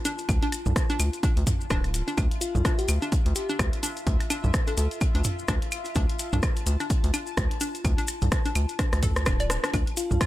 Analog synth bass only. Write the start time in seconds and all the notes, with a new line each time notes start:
0.29 D2
0.66 C2
1.00 D2
1.37 D2
1.70 D1
2.18 D2
2.55 C2
2.88 D2
3.26 D2
3.59 D2
4.07 D2
4.44 C2
4.77 D2
5.15 D2
5.48 D2
5.96 D2
6.33 C2
6.66 D2
7.04 D2
7.37 D2
7.85 D2
8.22 C2
8.56 D2
8.93 D2
9.26 D1
9.74 D2
10.11 C2